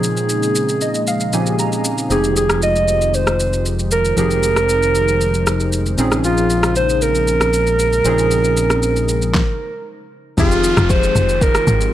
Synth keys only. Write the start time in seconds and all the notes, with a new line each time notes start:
Already playing: A#2 F3 C4 C#4 D#4 G#4
0.82 D#5
1.08 F5
1.33 A#2 F3 C4 C#4 D#4 G4 G#5
1.40 G#4
1.59 A#5
2.10 F3 C4 D#4 G4 G#4
4.16 F3 C4 D#4 G4 G#4
5.97 A#2 F3 C4 C#4 D#4 G#4
8.04 A#2 F3 C4 C#4 D#4 G#4
10.37 F3 C4 D#4 G4 G#4